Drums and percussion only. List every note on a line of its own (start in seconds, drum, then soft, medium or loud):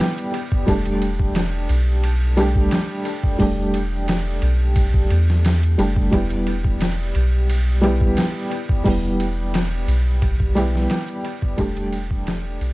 0.00 snare loud
0.00 ride medium
0.18 ride soft
0.34 ride medium
0.52 kick loud
0.68 kick loud
0.68 ride medium
0.85 ride soft
1.02 ride medium
1.20 kick medium
1.35 snare loud
1.35 ride medium
1.69 ride medium
2.04 ride medium
2.37 ride medium
2.56 kick medium
2.71 snare loud
2.71 ride medium
3.05 ride medium
3.23 kick medium
3.40 kick loud
3.40 open hi-hat medium
3.74 ride medium
4.08 snare loud
4.08 ride medium
4.42 ride medium
4.76 kick loud
4.76 ride medium
4.94 kick medium
5.10 ride medium
5.30 snare soft
5.45 snare loud
5.45 ride medium
5.63 ride soft
5.79 ride medium
5.96 kick medium
6.12 kick loud
6.12 ride medium
6.30 ride soft
6.47 ride medium
6.65 kick medium
6.81 snare loud
6.81 ride medium
7.15 ride medium
7.50 ride medium
7.83 ride medium
8.01 kick loud
8.17 snare loud
8.17 ride medium
8.51 ride medium
8.69 kick loud
8.86 kick loud
8.86 open hi-hat medium
9.20 ride medium
9.54 snare loud
9.54 ride medium
9.88 ride medium
10.22 kick loud
10.22 ride medium
10.40 kick loud
10.57 ride medium
10.75 snare soft
10.90 snare loud
10.90 ride medium
11.08 ride soft
11.25 ride medium
11.42 kick loud
11.58 kick loud
11.58 ride medium
11.77 ride soft
11.93 ride medium
12.11 kick loud
12.27 snare loud
12.27 ride medium
12.61 ride medium